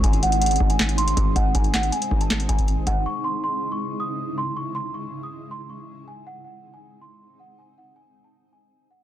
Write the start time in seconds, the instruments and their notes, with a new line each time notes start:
Already playing: ambient pad G#3 D#4
0.04 808-style bass G#1, ambient pad C4, celesta G#5, kick, closed hi-hat
0.13 closed hi-hat
0.23 celesta F#5, closed hi-hat
0.32 closed hi-hat
0.41 celesta F#5, closed hi-hat
0.46 closed hi-hat
0.51 closed hi-hat
0.56 closed hi-hat
0.60 808-style bass G#1, kick
0.70 celesta G#5, closed hi-hat
0.79 snare, clap, closed hi-hat
0.89 closed hi-hat
0.98 celesta C6, closed hi-hat
1.08 closed hi-hat
1.17 808-style bass G#1, kick, closed hi-hat
1.36 808-style bass G#1, celesta F#5, kick, closed hi-hat
1.55 808-style bass G#1, celesta G#5, kick, closed hi-hat
1.64 closed hi-hat
1.74 celesta F#5, snare, clap, closed hi-hat
1.83 closed hi-hat
1.92 celesta G#5, closed hi-hat
2.02 closed hi-hat
2.11 808-style bass G#1, kick
2.21 celesta A5, closed hi-hat
2.30 snare, clap, closed hi-hat
2.40 closed hi-hat
2.49 808-style bass G#1, celesta G#5, kick, closed hi-hat
2.58 kick, closed hi-hat
2.68 closed hi-hat
2.87 808-style bass G#1, celesta F#5, kick, closed hi-hat
3.06 ambient pad C#3 G#3 E4, celesta C#6
3.24 celesta C6
3.44 celesta C6
3.72 celesta C#6
4.00 celesta D#6
4.38 celesta C6
4.57 celesta C#6
4.75 celesta C6
4.94 celesta C#6
5.23 celesta D#6
5.51 celesta C6
5.70 celesta C#6
6.08 ambient pad C4 D#4, celesta G#5
6.27 celesta F#5
6.44 celesta F#5
6.74 celesta G#5
7.02 celesta C6
7.40 celesta F#5
7.59 celesta G#5
7.78 celesta F#5
7.96 celesta G#5
8.24 celesta A5
8.53 celesta G#5
8.91 celesta F#5